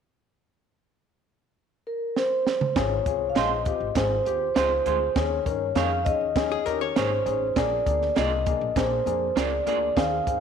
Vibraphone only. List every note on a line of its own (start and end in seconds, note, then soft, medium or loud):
1.87 2.17 A#4 medium
2.17 2.78 C5 medium
2.76 3.31 C#5 medium
3.30 3.36 F5 medium
3.36 3.98 D#5 medium
3.95 4.53 C5 medium
4.55 5.17 C5 medium
5.15 5.78 C#5 medium
5.76 6.07 F5 medium
6.05 6.67 D#5 loud
6.65 6.79 A#4 medium
6.95 7.58 C5 medium
7.56 8.18 D5 medium
8.15 8.78 D#5 loud
8.76 9.38 C5 medium
9.37 9.99 D5 medium
9.97 10.40 F5 medium